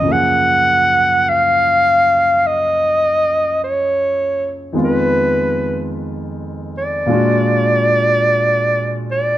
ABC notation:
X:1
M:4/4
L:1/8
Q:"Swing" 1/4=51
K:Gb
V:1 name="Clarinet"
g2 f2 e2 d2 | c2 z =d4 d |]
V:2 name="Grand piano" clef=bass
[G,,D,F,B,A]8 | [F,,E,A,CF]4 [B,,A,=DFG]4 |]